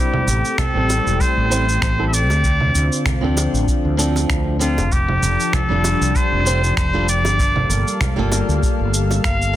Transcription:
Already playing: G3 A3 C4 E4 G4 C5
0.14 low conga
0.27 A1, shaker
0.45 shaker
0.58 A4, finger snap, kick, low conga, shaker
0.74 A1 G3 C4 E4 A4
0.90 high bongo, shaker
1.06 E1, shaker
1.20 C5, kick, shaker
1.37 A1
1.50 G3 C4 E4 C5, shaker
1.69 shaker
1.82 A1 C5, finger snap, kick, shaker
1.98 G3 C4 E4 A4
2.07 E5
2.14 D5, shaker
2.30 D2, high bongo, shaker
2.44 D3 F4, kick, shaker
2.61 low conga
2.75 D2, shaker
2.92 shaker
3.06 finger snap, kick, low conga, shaker
3.21 D2 F3 C4 D4 A4
3.37 high bongo, shaker
3.54 A1, shaker
3.68 kick, shaker
3.85 D2
3.97 F3 C4 D4 A4, shaker
4.16 high bongo, shaker
4.29 D2, finger snap, kick, shaker
4.59 F3 C4 D4 F4 A4, shaker
4.78 F1, high bongo, shaker
4.91 F3 D4 G4 A4, kick, shaker
5.09 low conga
5.22 F1, shaker
5.40 shaker
5.53 A4, finger snap, kick, low conga, shaker
5.69 F1 G3 D4 F4 A4
5.84 high bongo, shaker
6.01 C2, shaker
6.15 C5, kick, shaker
6.32 F1
6.45 G3 D4 F4 C5, shaker
6.64 shaker
6.77 C5, finger snap, kick, shaker
6.93 G3 D4 F4 A4
7.08 D5, shaker
7.25 G1, high bongo, shaker
7.38 G3 A#3 A4 F5, kick, shaker
7.56 low conga
7.69 G1, shaker
7.87 shaker
8.01 finger snap, kick, low conga, shaker
8.16 G1 G3 A#3 F4 A4
8.32 high bongo, shaker
8.49 D2, shaker
8.62 kick, shaker
8.79 G1
8.94 shaker
9.11 high bongo, shaker
9.24 G1 F5, finger snap, kick, shaker
9.42 shaker

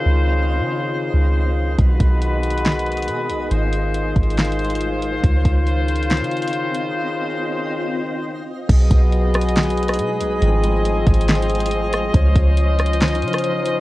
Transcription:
Already playing: C#3 D#3 C4 F4 C5 D#5
0.06 C#2
0.60 C#3
1.14 C#2
1.78 B1 D#3 G#3 B3 F#4 G#4 B4 D#5, kick, closed hi-hat
2.00 B1, kick, closed hi-hat
2.22 closed hi-hat
2.43 closed hi-hat
2.50 closed hi-hat
2.58 closed hi-hat
2.65 snare, closed hi-hat
2.72 closed hi-hat
2.79 closed hi-hat
2.86 closed hi-hat
2.92 closed hi-hat
2.97 closed hi-hat
3.02 closed hi-hat
3.08 B2, closed hi-hat
3.30 B1, closed hi-hat
3.51 G#1 G#3 F4 C5, closed hi-hat
3.73 closed hi-hat
3.94 closed hi-hat
4.16 G#1, kick, closed hi-hat
4.23 closed hi-hat
4.30 closed hi-hat
4.37 snare, closed hi-hat
4.45 closed hi-hat
4.52 closed hi-hat
4.59 closed hi-hat
4.64 closed hi-hat
4.70 closed hi-hat
4.75 closed hi-hat
4.81 closed hi-hat
5.02 closed hi-hat
5.24 C#2 C#3 C4 D#5, kick, closed hi-hat
5.45 C#2, kick, closed hi-hat
5.67 closed hi-hat
5.89 closed hi-hat
5.96 closed hi-hat
6.03 closed hi-hat
6.10 snare, closed hi-hat
6.17 C#3, closed hi-hat
6.25 closed hi-hat
6.32 closed hi-hat
6.37 closed hi-hat
6.42 closed hi-hat
6.48 closed hi-hat
6.53 closed hi-hat
6.75 closed hi-hat
8.69 B1 F#3 G#3 B3 D#4 G#4 B4 D#5, kick, closed hi-hat, crash
8.91 B1, kick, closed hi-hat
9.12 closed hi-hat
9.34 cross-stick, closed hi-hat
9.41 closed hi-hat
9.48 closed hi-hat
9.56 snare, closed hi-hat
9.63 closed hi-hat
9.70 closed hi-hat
9.77 closed hi-hat
9.82 closed hi-hat
9.88 cross-stick, closed hi-hat
9.93 closed hi-hat
9.99 B2, closed hi-hat
10.20 B1, closed hi-hat
10.42 G#1 F3 C4 F4 C5, closed hi-hat
10.63 closed hi-hat
10.85 closed hi-hat
11.06 G#1, kick, closed hi-hat
11.14 closed hi-hat
11.21 closed hi-hat
11.28 snare, closed hi-hat
11.35 closed hi-hat
11.42 closed hi-hat
11.50 closed hi-hat
11.55 closed hi-hat
11.60 closed hi-hat
11.66 closed hi-hat
11.71 closed hi-hat
11.93 cross-stick, closed hi-hat
12.14 C#2 F3 C#4 D#4 C5, kick, closed hi-hat
12.36 C#2, kick, closed hi-hat
12.57 closed hi-hat
12.79 cross-stick, closed hi-hat
12.86 closed hi-hat
12.94 closed hi-hat
13.01 snare, closed hi-hat
13.08 closed hi-hat
13.15 closed hi-hat
13.22 C#3, closed hi-hat
13.28 closed hi-hat
13.33 cross-stick, closed hi-hat
13.39 closed hi-hat
13.44 closed hi-hat
13.66 closed hi-hat

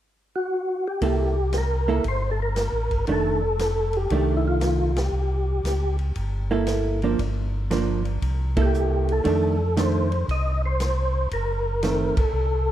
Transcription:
0.36 F#4
0.88 G4
1.01 C2 A#3 E4 A4, kick, ride
1.53 snare, hi-hat pedal, ride
1.58 A#4
1.88 A#3 E4 A4
2.04 G1, kick, ride
2.08 C5
2.31 A4
2.42 A#4
2.56 snare, hi-hat pedal, ride
2.72 A1
2.90 G1, kick, ride
3.07 F1 D#3 A3 D4, kick, ride
3.12 A4
3.59 snare, hi-hat pedal, ride
3.93 G4, ride
4.10 C2 D#3 A3 D4, kick, ride
4.37 E4
4.48 F4
4.61 snare, hi-hat pedal, ride
4.96 G4, snare, ride
5.12 C2
5.63 C#2, snare, hi-hat pedal, ride
5.99 ride
6.15 G1, kick, ride
6.51 A#3 E4 A4
6.67 snare, hi-hat pedal, ride
7.02 F3 A#3 D4, ride
7.19 G1, kick, ride
7.71 F3 A#3 D4, snare, hi-hat pedal, ride
8.05 ride
8.21 C2, kick, ride
8.57 A#3 E4 A4, kick, ride
8.62 G4
8.74 hi-hat pedal
9.09 A4, ride
9.24 F2 D#3 A3 D4, kick, ride
9.77 D#3 A3 D4 C5, snare, hi-hat pedal, ride
10.12 ride
10.28 C2 D#5, kick, ride
10.66 C5
10.80 snare, hi-hat pedal, ride
11.31 F#1 A#4, kick, ride
11.83 D#3 A3 C4, snare, hi-hat pedal, ride
12.17 F#1 A4, kick, ride
12.33 C2

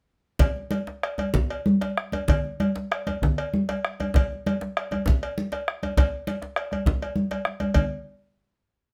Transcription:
0.39 bombo low, cowbell, djembe slap, low conga, djembe bass
0.56 high conga
0.71 cowbell, high conga
0.87 bombo rim, djembe slap
1.03 bombo rim, cowbell
1.18 bombo rim, cowbell, djembe slap, djembe tone, high conga
1.34 bombo low, djembe slap, high conga, low conga, djembe bass
1.50 cowbell
1.66 high conga
1.81 bombo rim, cowbell, djembe slap
1.97 bombo rim
2.12 cowbell, high conga, djembe tone
2.28 bombo low, cowbell, djembe slap, low conga, djembe bass
2.45 high conga
2.60 cowbell, high conga
2.76 bombo rim, djembe slap
2.92 bombo rim, cowbell
3.07 cowbell, djembe slap, high conga, djembe tone
3.22 bombo low, djembe slap, high conga, djembe bass, low conga
3.38 cowbell
3.54 high conga
3.69 bombo rim, cowbell, djembe slap
3.85 bombo rim
4.00 cowbell, djembe tone, high conga
4.14 bombo low, cowbell, djembe slap, djembe bass, low conga
4.32 high conga
4.46 cowbell, high conga
4.61 bombo rim, djembe slap
4.77 bombo rim, cowbell
4.91 bombo rim, cowbell, djembe slap, djembe tone, high conga
5.06 bombo low, djembe slap, high conga, djembe bass, low conga
5.23 cowbell
5.38 high conga
5.52 bombo rim, cowbell, djembe slap
5.68 bombo rim
5.83 cowbell, high conga, djembe tone
5.97 bombo low, cowbell, djembe slap, high conga, djembe bass, low conga
6.27 cowbell, high conga
6.42 bombo rim, djembe slap
6.56 bombo rim, cowbell
6.71 bombo rim, cowbell, djembe slap, high conga, djembe tone
6.86 bombo low, djembe slap, low conga, djembe bass
7.02 bombo rim, cowbell, high conga
7.16 high conga
7.31 cowbell, djembe slap
7.45 bombo rim, high conga
7.60 cowbell, high conga, djembe tone
7.74 bombo low, cowbell, low conga, djembe bass

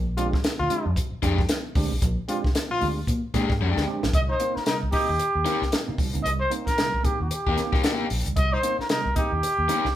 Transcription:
Already playing: A#1
0.17 G#3 C4 D4 F4 G4, closed hi-hat
0.33 C2 D4 G4, kick, snare
0.43 D4 G4, muted fingered electric bass stroke, snare, closed hi-hat
0.59 D2 A#2 F3 F4
0.69 G#3 C4 D4 G4, closed hi-hat
0.86 F2
0.96 A#2 F3, kick, closed hi-hat
1.12 muted fingered electric bass stroke
1.22 F2 G#3 C4 D4 G4, kick, snare, closed hi-hat
1.38 D4 G4, kick, snare
1.49 snare, closed hi-hat
1.75 D2 G#3 C4 D4 G4, kick, open hi-hat
1.92 B1
2.02 A#1 A#2 F3, kick, closed hi-hat
2.28 G#3 C4 D4 F4 G4, closed hi-hat
2.44 C2 D4 G4, kick, snare
2.55 snare, closed hi-hat
2.71 A#2 F3 F4
2.81 D2 G#3 C4 D4 G4, open hi-hat
3.07 A#2 F3, kick, closed hi-hat
3.34 A#2 G#3 C4 D4 G4, kick, snare, closed hi-hat
3.50 G#2 D4 G4, kick, snare
3.61 F2 G#3 D4 G4
3.77 D2, snare
3.87 G#3 C4 D4 G4
4.03 A#1, snare
4.13 C2 C3 G3 D#5, kick, closed hi-hat
4.29 D#4 C5
4.40 A#3 C4 D#4, closed hi-hat
4.55 C4 D#4 A#4, muted fingered electric bass stroke, snare
4.66 C3 G3 D#4 A#4, snare, closed hi-hat
4.83 C2
4.92 A#3 C4 D#4 G4, kick, open hi-hat
5.08 D#2 C4 D#4
5.19 closed hi-hat
5.35 D#2
5.45 A#3 C4 D#4 G4, snare, closed hi-hat
5.62 C2, snare
5.72 snare, closed hi-hat
5.87 C3 A#3 C4 D#4
5.98 C3 G3, kick, open hi-hat
6.14 C#2 A#3 C4 D#4, closed hi-hat
6.23 C2 C3 G3 D#5, closed hi-hat
6.39 C5
6.50 A#3 C4 D#4, closed hi-hat
6.66 C4 D#4 A#4, muted fingered electric bass stroke, kick, snare, closed hi-hat
6.77 C3 G3, snare, closed hi-hat
6.94 C2
7.03 A#3 C4 D#4 G4, kick, closed hi-hat
7.20 D#2 C4 D#4 G4
7.31 closed hi-hat
7.47 D#2 A#3 D#4 G4, kick
7.56 A#3 C4 D#4, snare, closed hi-hat
7.73 C2 A#3 D#4 G4, kick, snare
7.84 A#3 D#4 G4, snare, closed hi-hat
7.99 A#3 C4 D#4
8.10 A#1, open hi-hat
8.25 C#2 C3 G3, closed hi-hat
8.36 C2 C3 G3 D#5, kick, closed hi-hat
8.53 D#4 C5
8.63 A#3 C4 D#4, closed hi-hat
8.79 C4 D#4 A#4, muted fingered electric bass stroke, snare
8.89 C3 G3 D#4 A#4, snare, closed hi-hat
9.05 C2
9.15 A#3 C4 D#4 G4, kick, closed hi-hat
9.32 D#2 C4 D#4
9.43 closed hi-hat
9.58 D#2
9.68 A#3 C4 D#4 G4, snare, closed hi-hat
9.85 C2, snare

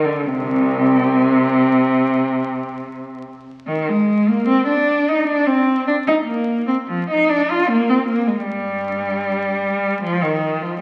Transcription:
0.05 D3
0.26 C2 C3
3.67 D#3
3.89 G#3
4.29 A#3
4.48 C4
4.68 D4
5.09 D#4
5.28 D4
5.47 C4
5.87 D4
6.07 D#4
6.26 A#3
6.67 C4
6.87 F3
7.10 D#4
7.29 D4
7.50 F4
7.69 A#3
7.89 C4
8.07 A#3
8.27 G#3
8.45 G2 G3
10.03 F3
10.23 D#3
10.62 F3

